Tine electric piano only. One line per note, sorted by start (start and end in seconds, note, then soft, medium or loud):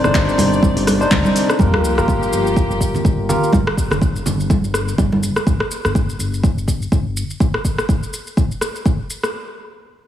0.04 0.98 D4 medium
0.04 0.98 D#4 medium
0.04 0.98 C5 medium
1.01 1.57 D4 medium
1.01 1.57 D#4 medium
1.01 1.57 C5 medium
1.60 1.94 F4 medium
1.60 1.94 G4 medium
1.60 1.94 A#4 medium
1.98 3.27 F4 medium
1.98 3.27 G4 medium
1.98 3.27 A#4 medium
3.29 3.51 F4 medium
3.29 3.51 G4 medium
3.29 3.51 A#4 medium